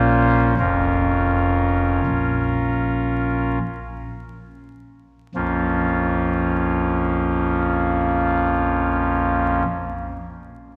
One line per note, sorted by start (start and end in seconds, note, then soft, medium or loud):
0.00 0.55 A#1 medium
0.00 0.54 A#2 medium
0.00 0.54 A#3 soft
0.00 0.55 C#4 soft
0.00 0.55 F4 medium
0.00 0.54 C5 loud
0.59 2.01 F1 medium
0.59 2.01 F2 medium
0.59 3.59 C#4 medium
0.59 3.59 F4 medium
0.59 3.59 A#4 medium
2.07 3.59 A#1 medium
5.35 9.63 A#1 medium
5.35 9.63 F2 medium
5.35 9.63 F3 soft
5.35 9.63 A#3 soft
5.35 9.64 C#4 soft
5.35 9.64 F4 medium